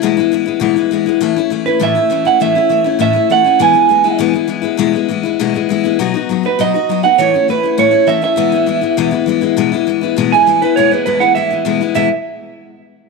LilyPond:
<<
  \new Staff \with { instrumentName = "Clean electric guitar" } { \time 4/4 \key e \major \tempo 4 = 201 r1 | r4. b'8 e''4. fis''8 | e''4. r8 e''4 fis''4 | gis''2 r2 |
r1 | r4. b'8 dis''4. fis''8 | cis''4 b'4 cis''4 e''8 e''8~ | e''1~ |
e''2~ e''8 gis''4 b'8 | cis''8 b'8 b'8 fis''8 e''4. r8 | e''8 r2. r8 | }
  \new Staff \with { instrumentName = "Steel-string acoustic guitar" } { \time 4/4 \key e \major <e, b, e gis b e'>8 <e gis b e'>8 <e gis b e'>8 <e gis b e'>8 <e, b, e gis b e'>8 <e gis b e'>8 <e gis b e'>8 <e gis b e'>8 | <a, e a cis' e'>8 <a cis' e'>8 <e a cis' e'>8 <a cis' e'>8 <a, e a cis' e'>8 <a cis' e'>8 <e a cis' e'>8 <a cis' e'>8 | <a, e a cis' e'>8 <a cis' e'>8 <e a cis' e'>8 <a cis' e'>8 <a, e a cis' e'>8 <a cis' e'>8 <e a cis' e'>8 <a cis' e'>8 | <e, b, e gis b e'>8 <e gis b e'>8 <e gis b e'>8 <e gis b e'>8 <e, b, e gis b e'>8 <e gis b e'>8 <e gis b e'>8 <e gis b e'>8 |
<e, b, e gis b e'>8 <e gis b e'>8 <e gis b e'>8 <e gis b e'>8 <e, b, e gis b e'>8 <e gis b e'>8 <e gis b e'>8 <e gis b e'>8 | <b, fis b dis' fis'>8 <b dis' fis'>8 <fis b dis' fis'>8 <b dis' fis'>8 <b, fis b dis' fis'>8 <b dis' fis'>8 <fis b dis' fis'>8 <b dis' fis'>8 | <a, e a cis' e'>8 <a cis' e'>8 <e a cis' e'>8 <a cis' e'>8 <a, e a cis' e'>8 <a cis' e'>8 <e a cis' e'>8 <a cis' e'>8 | <e, b, e gis b e'>8 <e gis b e'>8 <e gis b e'>8 <e gis b e'>8 <e, b, e gis b e'>8 <e gis b e'>8 <e gis b e'>8 <e gis b e'>8 |
<e, b, e gis b e'>8 <e gis b e'>8 <e gis b e'>8 <e gis b e'>8 <e, b, e gis b e'>8 <e gis b e'>8 <e gis b e'>8 <e gis b e'>8 | <e, b, e gis b e'>8 <e gis b e'>8 <e, b, e gis b e'>8 <e gis b e'>8 <e gis b e'>8 <e gis b e'>8 <e, b, e gis b e'>8 <e gis b e'>8 | <e, b, e gis b e'>8 r2. r8 | }
>>